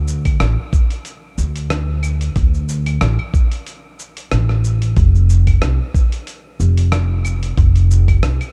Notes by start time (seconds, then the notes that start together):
Already playing: D2
0.08 shaker
0.25 kick, open hi-hat, claves, shaker
0.40 A1, cross-stick, open hi-hat, shaker
0.73 kick, shaker
0.90 open hi-hat, shaker
1.05 open hi-hat, shaker
1.38 D2, shaker
1.56 open hi-hat, shaker
1.70 cross-stick, open hi-hat, shaker
2.03 claves, shaker
2.21 open hi-hat, shaker
2.36 D2, kick, open hi-hat, shaker
2.54 shaker
2.69 shaker
2.86 open hi-hat, claves, shaker
3.01 A1, cross-stick, open hi-hat, shaker
3.19 claves
3.34 kick, shaker
3.52 open hi-hat, shaker
3.67 open hi-hat, shaker
3.99 shaker
4.17 open hi-hat, shaker
4.31 A1, cross-stick, open hi-hat, shaker
4.49 cross-stick
4.64 shaker
4.82 open hi-hat, shaker
4.96 F1, kick, open hi-hat, shaker
5.15 shaker
5.30 shaker
5.47 kick, open hi-hat, claves, shaker
5.62 C2, cross-stick, open hi-hat, shaker
5.94 kick, shaker
6.12 open hi-hat, shaker
6.27 open hi-hat, shaker
6.60 F1, shaker
6.77 open hi-hat, shaker
6.92 cross-stick, open hi-hat, shaker
7.25 claves, shaker
7.43 open hi-hat, shaker
7.57 F1, kick, open hi-hat, shaker
7.76 open hi-hat, shaker
7.91 shaker
8.08 kick, open hi-hat, claves, shaker
8.23 C2, cross-stick, open hi-hat, shaker
8.41 open hi-hat, claves, shaker